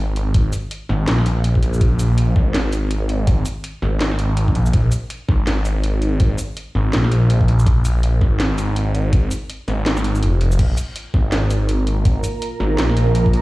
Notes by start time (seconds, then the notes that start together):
Already playing: G#1
0.16 closed hi-hat
0.34 kick, closed hi-hat
0.53 closed hi-hat, shaker
0.71 closed hi-hat
0.89 G#1, snare
1.08 A#1, snare, closed hi-hat
1.18 snare
1.26 closed hi-hat
1.44 closed hi-hat
1.55 kick
1.63 A#1, closed hi-hat
1.74 shaker
1.81 kick, closed hi-hat
1.99 closed hi-hat, shaker
2.18 closed hi-hat
2.36 G#1, kick, snare
2.54 snare, closed hi-hat
2.73 closed hi-hat, shaker
2.91 closed hi-hat
3.09 closed hi-hat
3.27 kick, closed hi-hat
3.46 closed hi-hat, shaker
3.64 closed hi-hat
3.82 G#1, snare
4.01 snare, closed hi-hat
4.11 snare
4.19 closed hi-hat
4.37 closed hi-hat
4.48 kick
4.55 A#1, closed hi-hat
4.66 shaker
4.73 A#1, kick, closed hi-hat
4.92 closed hi-hat, shaker
5.10 closed hi-hat
5.29 G#1, kick, snare
5.47 snare, closed hi-hat
5.65 closed hi-hat, shaker
5.84 closed hi-hat
6.02 closed hi-hat
6.20 kick, closed hi-hat
6.38 closed hi-hat, shaker
6.57 closed hi-hat
6.75 G#1, snare
6.93 A#1, snare, closed hi-hat
7.04 snare
7.12 closed hi-hat
7.30 closed hi-hat
7.41 kick
7.48 A#1, closed hi-hat
7.59 shaker
7.66 kick, closed hi-hat
7.85 closed hi-hat, shaker
8.03 closed hi-hat
8.21 G#1, kick, snare
8.40 snare, closed hi-hat
8.58 closed hi-hat, shaker
8.76 closed hi-hat
8.95 closed hi-hat
9.13 kick, closed hi-hat
9.31 closed hi-hat, shaker
9.50 closed hi-hat
9.68 G#1, snare, closed hi-hat
9.86 snare, closed hi-hat
9.97 snare, shaker
10.04 closed hi-hat
10.15 shaker
10.23 F1, closed hi-hat
10.41 F1, closed hi-hat
10.52 shaker
10.59 A#1 A#3 F4 A#4 A#5, kick, closed hi-hat, crash
10.77 closed hi-hat, shaker
10.96 closed hi-hat
11.14 G#1, kick, snare
11.32 snare, closed hi-hat
11.51 closed hi-hat, shaker
11.69 closed hi-hat
11.87 closed hi-hat
12.05 kick, closed hi-hat
12.24 closed hi-hat, shaker
12.42 closed hi-hat
12.60 G#1, snare
12.78 A#1, snare, closed hi-hat
12.89 snare
12.97 closed hi-hat
13.15 closed hi-hat
13.26 kick
13.33 A#1, closed hi-hat